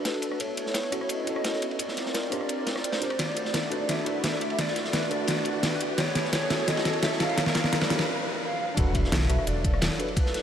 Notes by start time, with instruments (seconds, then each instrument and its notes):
Already playing: analog synth pad D4 F#4 A4 E5, tine electric piano D4 F#4 A4 B4, riser
0.05 soft synth lead B4, snare, closed hi-hat, ride
0.14 ride
0.22 closed hi-hat, ride
0.31 cross-stick
0.40 analog synth pad B3 E4 C#5, soft synth lead C#5, closed hi-hat, ride
0.57 closed hi-hat, ride
0.66 snare
0.74 snare, closed hi-hat, ride
0.83 ride
0.91 tine electric piano C#4 E4 F#4 A4, cross-stick, closed hi-hat, ride
1.01 cross-stick
1.09 soft synth lead D#5, closed hi-hat, ride
1.24 tine electric piano C#4 E4 F#4, closed hi-hat, ride
1.30 tine electric piano A4
1.36 cross-stick
1.44 snare, closed hi-hat, ride
1.53 snare
1.62 closed hi-hat, ride
1.71 ride
1.79 analog synth pad C4 F4 A#4 D5, soft synth lead D5, closed hi-hat, ride
1.88 snare
1.97 snare, closed hi-hat, ride
2.06 snare
2.14 soft synth lead A#4, snare, closed hi-hat, ride
2.23 ride
2.30 tine electric piano D4 F4 G4 A#4, soft synth lead D5, cross-stick, open hi-hat, ride
2.41 cross-stick
2.49 closed hi-hat, ride
2.67 snare, closed hi-hat, ride
2.76 cross-stick, snare
2.84 soft synth lead C5, closed hi-hat, ride
2.92 snare, ride
3.00 tine electric piano D4 F4 G4 A#4, snare, closed hi-hat
3.10 cross-stick, ride
3.19 analog synth pad A3 E4 F#4, soft synth lead D5, snare, closed hi-hat, ride
3.37 closed hi-hat, ride
3.45 snare
3.54 snare, closed hi-hat, ride
3.63 ride
3.70 tine electric piano D4 F#4 A4 B4, closed hi-hat, ride
3.89 soft synth lead E5, snare, closed hi-hat, ride
4.04 tine electric piano D4 F#4 A4, closed hi-hat, ride
4.09 tine electric piano B4
4.24 snare, closed hi-hat, ride
4.32 snare
4.41 closed hi-hat, ride
4.50 ride
4.58 soft synth lead D5, snare, closed hi-hat, ride
4.68 snare
4.76 snare, closed hi-hat, ride
4.84 snare
4.93 soft synth lead B4, snare, closed hi-hat, ride
5.02 ride
5.10 tine electric piano D4 F#4 A4 B4, soft synth lead D5, open hi-hat, ride
5.27 snare, closed hi-hat, ride
5.43 tine electric piano D4 F#4 A4, closed hi-hat, ride
5.48 tine electric piano B4
5.63 soft synth lead B4, snare, closed hi-hat, ride
5.72 ride
5.81 closed hi-hat, ride
5.98 analog synth pad B3 E4 A4 C#5, soft synth lead C#5, snare, closed hi-hat, ride
6.15 snare, closed hi-hat, ride
6.24 snare
6.33 snare, closed hi-hat, ride
6.42 ride
6.50 tine electric piano C#4 E4 F#4 A4, snare, closed hi-hat, ride
6.60 ride
6.67 soft synth lead D#5, snare, closed hi-hat, ride
6.77 snare, ride
6.83 tine electric piano C#4 E4 F#4, snare, closed hi-hat, ride
6.88 tine electric piano A4
6.93 ride
7.03 soft synth lead E5, snare, closed hi-hat, ride
7.12 snare
7.20 soft synth lead F5, snare, closed hi-hat, ride
7.29 ride
7.37 analog synth pad C4 F4 A#4 D5, snare, closed hi-hat, ride
7.46 snare
7.55 snare, closed hi-hat, ride
7.64 snare, ride
7.73 snare, closed hi-hat, ride
7.81 snare, ride
7.89 tine electric piano D4 F4 G4 A#4, snare, open hi-hat, ride
7.99 snare, ride
8.42 soft synth lead F5
8.75 sub bass E1, analog synth pad F#3 D4 A4, tine electric piano D4 F#4 A4, soft synth lead F#5, kick, closed hi-hat, ride, impact
8.80 tine electric piano B4
8.94 soft synth lead E5, kick, closed hi-hat, ride
9.04 snare
9.12 sub bass B1, snare, closed hi-hat, ride
9.22 ride
9.28 sub bass B1, tine electric piano D4 F#4 A4 B4, cross-stick, closed hi-hat, ride
9.39 cross-stick
9.46 sub bass E1, soft synth lead D5, closed hi-hat, ride
9.64 kick, closed hi-hat, ride
9.74 cross-stick
9.82 sub bass E1, snare, closed hi-hat, ride
9.91 snare
9.98 tine electric piano D4 F#4 A4 B4, soft synth lead B4, closed hi-hat, ride
10.08 ride
10.16 soft synth lead B4, kick, closed hi-hat, ride
10.26 snare
10.34 snare, closed hi-hat, ride